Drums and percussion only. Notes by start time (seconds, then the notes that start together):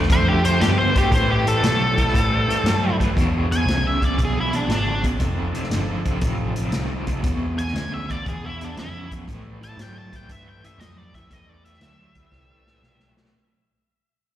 0.03 snare
0.10 kick, closed hi-hat
0.45 closed hi-hat
0.61 snare, closed hi-hat
0.95 kick, closed hi-hat
1.12 kick, closed hi-hat
1.47 closed hi-hat
1.63 snare, closed hi-hat
1.98 kick, closed hi-hat
2.08 snare
2.14 kick, closed hi-hat
2.50 closed hi-hat
2.66 snare, closed hi-hat
3.00 kick, closed hi-hat
3.17 kick, closed hi-hat
3.52 closed hi-hat
3.68 snare, closed hi-hat
4.02 kick, closed hi-hat
4.19 kick, closed hi-hat
4.53 closed hi-hat
4.70 snare, closed hi-hat
5.04 kick, closed hi-hat
5.20 kick, closed hi-hat
5.55 closed hi-hat
5.63 snare
5.71 snare, closed hi-hat
6.05 kick, closed hi-hat
6.21 kick, closed hi-hat
6.56 closed hi-hat
6.72 snare, closed hi-hat
7.07 kick, closed hi-hat
7.24 kick, closed hi-hat
7.58 closed hi-hat
7.67 snare
7.76 snare, closed hi-hat
8.10 kick, closed hi-hat
8.26 kick, closed hi-hat
8.61 closed hi-hat
8.77 snare, closed hi-hat
9.11 kick, closed hi-hat
9.28 kick, closed hi-hat
9.63 closed hi-hat
9.79 snare, closed hi-hat
10.13 kick, closed hi-hat
10.29 kick, closed hi-hat
10.64 closed hi-hat
10.80 snare, closed hi-hat
11.14 kick, closed hi-hat
11.31 kick, closed hi-hat
11.65 closed hi-hat
11.74 snare
11.81 snare, closed hi-hat
12.15 kick, closed hi-hat
12.32 kick, snare
12.67 snare
12.83 snare
13.00 snare
13.17 snare
13.25 snare